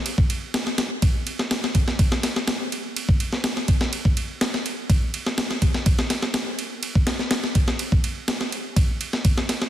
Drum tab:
RD |x-x-x-x-x-x-x-x-|x-x-x-x-x-x-x-x-|x-x-x-x-x-x-x-x-|x-x-x-x-x-x-x-x-|
SD |----ooo----ooo-o|-oooo------ooo-o|----oo-----ooo-o|-oooo-----oooo-o|
BD |-o------o-----o-|o--------o----o-|-o------o-----o-|o--------o----o-|

RD |x-x-x-x-x-x-x-x-|
SD |----oo-----o-ooo|
BD |-o------o---o---|